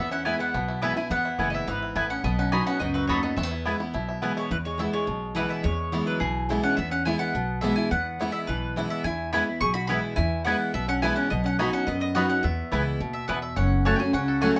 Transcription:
Already playing: E2 B3 E4 E5
0.00 B3
0.11 C#4 E4 F#5
0.25 E3 G#3 B3 E4 B4 G#5
0.39 B3 E4 F#5
0.54 B1 B2 B3
0.68 E4
0.82 E3 G#3 B3 E4 B4 E5 G#5
0.96 B3 E4 G#5
1.10 E2 B3 F#5
1.25 E4
1.39 F#1 E3 G#3 B3 E4 B4 G#5
1.50 B3 D#5
1.54 B3 E4 E5
1.67 G#1 G#2 E3 B3 B4
1.83 E4
1.96 A1 A2 B3 E4 B4 G#5
2.10 B3 C#4 F#5
2.24 B1 B2 B3 D#5
2.39 C#4 D#4 F#5
2.52 F#3 B3 D#4 F#4 D#5 G#5 B5
2.66 B3 C#4 F#5
2.79 C#2 F#2 B3 D#4 D#5
2.94 F#3 F#4 B4
3.07 D#2 F#3 B3 D#4 F#4 A4 C#5 D#5 B5
3.23 B3 D#5
3.37 E2 A3 B3 E5
3.43 B3
3.51 E4
3.66 E3 G#3 B3 E4 B4 G#5
3.80 B3 E4
3.94 B1 B2 E4
4.09 E4
4.22 E3 G#3 B3 E4 B4 G#5
4.37 G#3 E4 C#5
4.51 E2 E3 B4
4.65 G#3 C#5
4.78 E3 G#3 B3 E4 E5
4.93 G#3 C#5
5.07 B1 B2
5.35 E3 G#3 B3 E4 B4
5.49 B3 E5
5.63 E2 G#3 C#5
5.92 E3 G#3 B3 E4
6.06 F#3 B4
6.20 B1 B2 E3 G#4
6.49 E3 G#3 B3 E4
6.63 C#4 F#5
6.77 E2 B3 E5
6.91 C#4 F#5
7.05 E3 G#3 B3 E4 G#5
7.19 B3 F#5
7.35 B1 B2
7.61 E3 G#3 B3 E4 E5
7.76 E4 G#5
7.91 E2 B3 F#5
8.19 E3 G#3 B3 E4
8.32 B3 E5
8.47 B1 B2 E3 B4
8.76 E3 G#3 B3 E4
8.90 B3 E5
9.04 E2 E4 G#5
9.32 E3 G#3 B3 E4 B4 G#5 B5
9.47 B3 E4
9.61 B1 B2 G#4 C#6
9.74 F#4 B5
9.87 E3 G#3 B3 E4 B4 G#5 B5
10.16 E2 E4 G#5
10.45 E3 G#3 B3 E4 B4 F#5 G#5
10.74 B1 B2 B3 E5
10.88 C#4 F#5
11.02 E3 G#3 B3 E4 B4 G#5
11.16 C#4 F#5
11.30 B1 B2 B3 D#5
11.44 C#4 F#5
11.59 F#3 B3 D#4 F#4 D#5 G#5 B5
11.73 C#4 F#5
11.87 F#2 B3 D#5
12.00 B3 D#5
12.15 F#3 B3 D#4 F#4 D#5 F#5 B5
12.29 C#4 F#5
12.43 E2 B3 E5
12.72 C#2 E3 G#3 B3 E4 B4 G#5
13.00 D#2 B2
13.13 E5
13.28 E2 B3 E4 B4 F#5 G#5
13.42 E5
13.56 F#1 F#2 C#4 F#5
13.85 F#3 A3 C#4 F#4 C#5 F#5 A5
13.96 F#3 F#4 G5 G#5
14.02 C#4
14.13 C#2 C#3 C#4 F#5
14.28 A4
14.41 F#3 A3 C#4 F#4 C#5 F#5 G#5
14.56 C#4 F#5

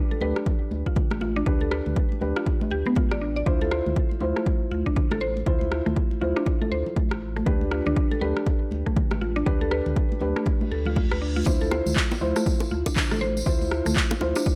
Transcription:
Already playing: D4 G4 B4
0.11 A4, muted conga
0.21 D2 D4 G4 B4, high conga, low conga
0.36 cross-stick
0.46 kick, muted conga, low conga
0.71 D2, muted conga, high conga
0.86 F4, kick
0.96 kick, mid tom, muted conga
1.11 A1, cross-stick, high conga
1.21 F4, high conga
1.36 D4, muted conga
1.46 D2 D4 G4 B4, kick, mid tom
1.61 A4, muted conga
1.71 B4, cross-stick
1.86 D2, mid tom, muted conga, high conga
1.96 kick
2.12 muted conga
2.21 D2 D4 G4 B4, high conga, low conga
2.36 F4, cross-stick
2.46 kick, muted conga
2.61 high conga
2.71 D2 G4, muted conga
2.86 B3, high conga, low conga
2.95 F4, kick, muted conga, high conga
3.11 A1 D5, cross-stick
3.22 D4
3.36 D5, muted conga, high conga
3.46 D2 D4 E4 F4 C5, kick, mid tom
3.61 A4, muted conga
3.71 C5, cross-stick
3.86 D2, mid tom, muted conga, high conga
3.96 kick
4.11 muted conga
4.21 D2 E4 F4 C5, high conga, low conga
4.36 A3, cross-stick
4.46 kick, muted conga, low conga
4.71 D2 F4, muted conga, high conga
4.86 D4, kick
4.96 D4, kick, mid tom, muted conga
5.11 A1 A4, cross-stick, high conga
5.20 C5, high conga
5.37 muted conga
5.46 D2 E4 F4 C5, kick, mid tom
5.61 muted conga
5.72 cross-stick
5.86 D2 A3, mid tom, muted conga, high conga
5.96 kick
6.11 muted conga
6.21 D2 E4 F4 C5, high conga, low conga
6.36 D4, cross-stick
6.46 D4, kick, muted conga
6.62 A4, high conga
6.71 D2 C5, muted conga
6.86 low conga
6.96 kick, muted conga, high conga
7.11 A1, cross-stick
7.36 A3, muted conga, high conga
7.46 D2 D4 G4 B4, kick, mid tom
7.61 muted conga
7.71 F4, cross-stick
7.86 D2 D4, mid tom, muted conga, high conga
7.96 D4, kick
8.11 A4, muted conga
8.21 D2 D4 G4 B4, high conga, low conga
8.37 cross-stick
8.46 kick, muted conga, low conga
8.71 D2, muted conga, high conga
8.86 A3, kick
8.96 kick, mid tom, muted conga
9.11 A1, cross-stick, high conga
9.21 F4, high conga
9.36 D4, muted conga
9.46 D2 D4 G4 B4, kick, mid tom
9.61 A4, muted conga
9.71 B4, cross-stick
9.86 D2, mid tom, muted conga, high conga
9.96 kick
10.12 muted conga
10.21 D2 D4 G4 B4, high conga, low conga
10.36 A3, cross-stick
10.46 kick, reverse cymbal, muted conga
10.61 high conga
10.71 D2 A4, muted conga
10.86 F4, high conga, low conga
10.96 F4, kick, muted conga, high conga
11.12 D2 B4, cross-stick
11.22 D4
11.36 F4, muted conga, high conga
11.46 D2 D4 E4 F4 C5, kick, mid tom, tambourine, low bongo
11.61 A4, tambourine, muted conga
11.71 C5, cross-stick, low bongo
11.86 D2, mid tom, tambourine, muted conga, high conga
11.96 kick, clap, tambourine
12.11 tambourine, low bongo, muted conga
12.21 D2 E4 F4 C5, high conga, low conga
12.36 A3, cross-stick, tambourine
12.46 kick, tambourine, muted conga, low conga
12.60 tambourine, high bongo
12.71 D2 F4, muted conga, high conga
12.86 D4, kick, tambourine, high bongo
12.96 D4, kick, clap, mid tom, tambourine, muted conga
13.11 A1 A4, cross-stick, tambourine, high conga
13.21 C5, high conga
13.37 tambourine, muted conga
13.46 D2 E4 F4 C5, kick, mid tom, tambourine
13.61 tambourine, muted conga
13.71 cross-stick
13.85 D2 A3, mid tom, tambourine, muted conga, high conga
13.96 kick, clap, tambourine
14.11 tambourine, high bongo, low bongo, muted conga
14.21 D2 E4 F4 C5, high bongo, high conga, low conga
14.35 D4, cross-stick, tambourine
14.46 D4, kick, tambourine, muted conga

